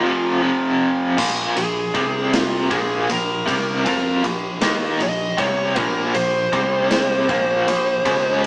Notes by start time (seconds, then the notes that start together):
Already playing: F4 F5
0.03 F2 C3 F3
0.41 F2 C3 F3
1.18 A#1 A#2 F3 A#3, kick, crash
1.56 A#1 A#2 F3 G#4, ride
1.94 C2 C3 G3 C4, kick, ride
2.33 F4, snare, ride
2.70 A#1 A#2 F3 A#3 G#4, kick, ride
3.09 A#1 A#2 F3 A#4, ride
3.46 C2 C3 G3 C4, kick, ride
3.84 F2 F3 C4 F4 A#4, kick, ride
4.24 A#1 A#2 F3, ride
4.61 D#2 D#3 A#3 D#4, snare, ride
4.99 A#1 A#2 F3 D#5, ride
5.38 C2 C3 G3 C4 C#5, kick, ride
5.76 A#1 A#2 F3 A#3 A#4, kick, ride
6.14 A#1 A#2 F3 C5, ride
6.53 C2 C3 G3 C4, kick, ride
6.91 snare, ride
7.29 A#1 A#2 F3 A#3, kick, ride
7.68 A#1 A#2 F3, ride
8.05 C#2 C#3 G#3 C#4, kick, ride